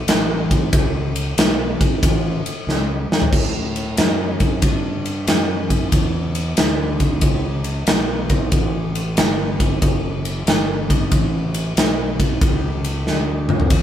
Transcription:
0.07 fingered electric bass A1, snare, ride
0.51 kick, ride
0.73 fingered electric bass C#2, kick, ride
1.16 ride
1.37 fingered electric bass B1, snare, ride
1.81 muted fingered electric bass stroke, kick, ride
2.03 fingered electric bass A1, kick, ride
2.46 muted fingered electric bass stroke, ride
2.67 fingered electric bass C#2, snare
3.10 muted fingered electric bass stroke, snare
3.22 floor tom
3.33 fingered electric bass A2, kick, crash
3.76 ride
3.97 fingered electric bass F#2, snare, ride
4.40 kick, ride
4.62 fingered electric bass G2, kick, ride
5.05 ride
5.27 fingered electric bass F#2, snare, ride
5.70 kick, ride
5.92 fingered electric bass E2, kick, ride
6.35 ride
6.57 fingered electric bass D2, snare, ride
7.00 kick, ride
7.21 fingered electric bass C#2, kick, ride
7.64 ride
7.87 fingered electric bass B1, snare, ride
8.30 kick, ride
8.52 fingered electric bass A1, kick, ride
8.95 ride
9.17 fingered electric bass G1, snare, ride
9.60 kick, ride
9.82 fingered electric bass F#1, kick, ride
10.25 ride
10.46 fingered electric bass G1, snare, ride
10.90 kick, ride
11.11 fingered electric bass A1, kick, ride
11.54 ride
11.77 fingered electric bass B1, snare, ride
12.20 kick, ride
12.41 fingered electric bass C#2, kick, ride
12.84 ride
13.06 fingered electric bass D2, snare
13.49 mid tom
13.60 floor tom
13.70 fingered electric bass E2, kick, ride, crash

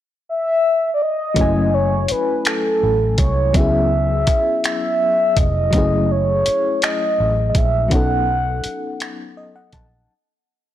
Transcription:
0.29 soft synth lead E5
0.94 soft synth lead D5
1.02 soft synth lead D#5
1.34 fingered electric bass F#1, fm electric piano F#3 A3 C#4, kick, closed hi-hat
1.40 fm electric piano E4 G#5
1.74 soft synth lead C#5
2.08 soft synth lead B4, muted fingered electric bass stroke, closed hi-hat
2.45 soft synth lead A4, finger snap, closed hi-hat
2.83 fingered electric bass A1
3.18 fingered electric bass C2, soft synth lead C#5, kick, closed hi-hat
3.53 fm electric piano F#3 B3 C#4, soft synth lead E5, kick, closed hi-hat
3.58 fm electric piano E4 G#4
4.27 muted fingered electric bass stroke, kick, closed hi-hat
4.64 soft synth lead E5, finger snap, closed hi-hat
5.37 fingered electric bass F1, soft synth lead D#5, kick, closed hi-hat
5.71 fingered electric bass F#1, fm electric piano F#3 A3 C#4, kick, closed hi-hat
5.76 fm electric piano E4 G#4
6.11 soft synth lead C#5
6.46 muted fingered electric bass stroke, closed hi-hat
6.82 soft synth lead D#5, finger snap, closed hi-hat
7.20 fingered electric bass A1
7.49 soft synth lead D#5
7.55 fingered electric bass A#1, soft synth lead E5, kick, closed hi-hat
7.88 fm electric piano F#3 B3 C#4, soft synth lead F#5, kick, closed hi-hat
7.93 fm electric piano D#4 A4
8.64 muted fingered electric bass stroke, closed hi-hat
9.00 finger snap, closed hi-hat
9.37 fm electric piano D#5
9.56 fm electric piano F#5
9.73 fingered electric bass A#1, fm electric piano A5, kick, closed hi-hat

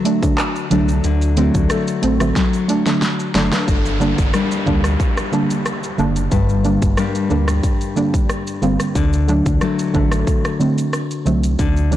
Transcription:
Already playing: nylon-string guitar D3 F#3 A3 D4
0.05 synth pluck A3 D4, closed hi-hat, shaker
0.22 synth pluck D3 F#3 A3 D4, kick, shaker
0.38 cross-stick, clap, shaker
0.56 shaker
0.71 sub bass C2, synth pluck D3 F#3 A3 D4, nylon-string guitar F#3 A3 D4, closed hi-hat, shaker
0.88 shaker
1.04 sub bass D2, nylon-string guitar D3, shaker
1.22 shaker
1.36 synth pluck D3 F#3 A3 C4, nylon-string guitar F#3 A3 D4, closed hi-hat, shaker
1.54 sub bass D2, kick, shaker
1.70 nylon-string guitar A3, cross-stick, shaker
1.88 shaker
2.02 sub bass A1, synth pluck A3 C4, closed hi-hat, shaker
2.20 synth pluck D3 F#3 A3 C4, cross-stick, shaker
2.36 nylon-string guitar F#3, kick, snare, shaker
2.53 shaker
2.68 synth pluck A3 D4, closed hi-hat, shaker
2.86 synth pluck D3 F#3 A3 D4, snare, shaker
3.02 snare, shaker
3.20 shaker
3.34 sub bass F#1, synth pluck D3 F#3 A3 D4, nylon-string guitar F#3 A3 D4, snare, closed hi-hat, shaker
3.52 snare, high timbale, shaker
3.68 sub bass G1, kick, downlifter, shaker
3.85 shaker
4.00 synth pluck D3 G3 A#3 D4, shaker
4.18 sub bass G1, kick, shaker
4.34 nylon-string guitar G3 A#3 D4, cross-stick, shaker
4.51 shaker
4.66 sub bass D2, synth pluck D3 G3 A#3 D4, nylon-string guitar A#3, kick, shaker
4.84 cross-stick, shaker
5.00 kick, shaker
5.17 cross-stick, shaker
5.32 synth pluck D3 G3 A#3 D4, shaker
5.50 shaker
5.66 cross-stick, shaker
5.83 shaker
5.98 sub bass F#1, synth pluck D3 G3 A#3 D4, shaker
6.16 shaker
6.32 sub bass G1, nylon-string guitar G2, kick, shaker
6.49 shaker
6.64 synth pluck D3 G3 A#3 D4, shaker
6.82 sub bass G1, kick, shaker
6.97 nylon-string guitar G3 A#3 D4, cross-stick, shaker
7.15 shaker
7.30 sub bass D2, synth pluck D3 G3 A#3 D4, nylon-string guitar A#3, shaker
7.48 cross-stick, shaker
7.63 kick, shaker
7.81 shaker
7.96 synth pluck D3 G3 A#3 D4, shaker
8.14 kick, shaker
8.29 cross-stick, shaker
8.47 shaker
8.62 sub bass G1, synth pluck D3 G3 A#3 C4, shaker
8.80 cross-stick, shaker
8.95 sub bass D2, nylon-string guitar D3, kick, shaker
9.13 shaker
9.28 synth pluck D3 F#3 A3 D4, shaker
9.46 sub bass D2, kick, shaker
9.61 nylon-string guitar F#3 A3 D4, cross-stick, shaker
9.79 shaker
9.94 sub bass A1, synth pluck D3 F#3 A3 D4, nylon-string guitar A3, kick, shaker
10.12 cross-stick, shaker
10.27 kick, shaker
10.45 cross-stick, shaker
10.60 synth pluck D3 F#3 A3 C4, shaker
10.78 shaker
10.93 cross-stick, shaker
11.11 shaker
11.25 sub bass C2, synth pluck D3 F#3 A3 C4, shaker
11.43 shaker
11.59 sub bass D2, nylon-string guitar D3, kick, shaker
11.77 shaker
11.91 synth pluck D3 F#3 A3 D4, shaker

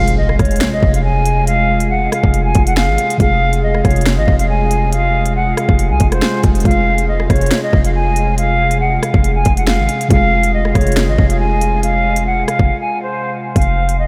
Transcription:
Already playing: 808-style bass F1, synth keys C3 G#3 F4 G#4, analog synth pad C3 G#3 F4 G#4, flute F5, impact
0.08 closed hi-hat
0.18 flute D#5
0.29 cross-stick
0.39 808-style bass F1, flute C#5, kick, cross-stick, closed hi-hat
0.45 closed hi-hat
0.51 closed hi-hat
0.56 closed hi-hat
0.61 finger snap, snare, closed hi-hat
0.73 flute D#5
0.83 808-style bass F1, kick
0.94 flute F5, closed hi-hat
1.04 flute G#5
1.26 closed hi-hat
1.47 flute F5, closed hi-hat
1.80 closed hi-hat
1.90 flute F#5
2.12 flute F5, cross-stick, closed hi-hat
2.24 808-style bass F1, kick
2.34 closed hi-hat
2.45 flute G#5
2.55 808-style bass F1, kick, closed hi-hat
2.67 flute F#5, closed hi-hat
2.77 flute F5, finger snap, snare
2.88 808-style bass G#1
2.98 closed hi-hat
3.10 closed hi-hat
3.18 808-style bass F1, synth keys C3 G#3 F4, analog synth pad G#3, flute F5, kick, closed hi-hat
3.22 synth keys G#4
3.53 closed hi-hat
3.63 flute D#5
3.75 cross-stick
3.85 808-style bass F1, flute C#5, kick, cross-stick, closed hi-hat
3.91 closed hi-hat
3.96 closed hi-hat
4.01 closed hi-hat
4.06 finger snap, snare, closed hi-hat
4.18 808-style bass G#1, flute D#5
4.28 808-style bass F1, kick
4.39 flute F5, closed hi-hat
4.49 flute G#5
4.71 closed hi-hat
4.93 flute F5, closed hi-hat
5.26 closed hi-hat
5.36 flute F#5
5.57 flute F5, cross-stick, closed hi-hat
5.69 808-style bass F1, kick
5.79 closed hi-hat
5.90 808-style bass C2, flute G#5
6.00 808-style bass F1, kick, closed hi-hat
6.12 flute C5, cross-stick, closed hi-hat
6.22 finger snap, snare
6.43 808-style bass F1, kick, closed hi-hat
6.55 closed hi-hat
6.60 synth keys C3, closed hi-hat
6.65 808-style bass F1, synth keys G#3 F4 G#4, flute F5, kick, closed hi-hat
6.71 closed hi-hat
6.98 closed hi-hat
7.08 flute D#5
7.20 cross-stick
7.29 808-style bass F1, flute C#5, kick, cross-stick, closed hi-hat
7.36 closed hi-hat
7.41 closed hi-hat
7.46 closed hi-hat
7.51 finger snap, snare, closed hi-hat
7.63 flute D#5
7.73 808-style bass F1, kick
7.85 flute F5, closed hi-hat
7.95 flute G#5
8.16 closed hi-hat
8.38 flute F5, closed hi-hat
8.71 closed hi-hat
8.81 flute F#5
9.03 flute F5, cross-stick, closed hi-hat
9.14 808-style bass F1, kick
9.24 closed hi-hat
9.35 flute G#5
9.45 808-style bass F1, kick, closed hi-hat
9.57 flute F#5, closed hi-hat
9.67 flute F5, finger snap, snare
9.79 808-style bass G#1
9.89 closed hi-hat
10.01 closed hi-hat
10.08 808-style bass F1, synth keys C3 G#3 F4, analog synth pad C3 F4 G#4, flute F5, kick, closed hi-hat
10.13 synth keys G#4
10.43 closed hi-hat
10.54 flute D#5
10.65 cross-stick
10.75 808-style bass F1, flute C#5, kick, cross-stick, closed hi-hat
10.81 closed hi-hat
10.87 closed hi-hat
10.92 closed hi-hat
10.97 finger snap, snare, closed hi-hat
11.08 808-style bass G#1, flute D#5
11.18 808-style bass F1, kick
11.30 flute F5, closed hi-hat
11.40 flute G#5
11.61 closed hi-hat
11.83 flute F5, closed hi-hat
12.16 closed hi-hat
12.26 flute F#5
12.48 flute F5, cross-stick, closed hi-hat
12.59 808-style bass F1, kick
12.81 flute G#5
13.03 flute C5
13.56 808-style bass F1, flute F5, kick, closed hi-hat
13.62 closed hi-hat
13.89 closed hi-hat
13.99 flute D#5

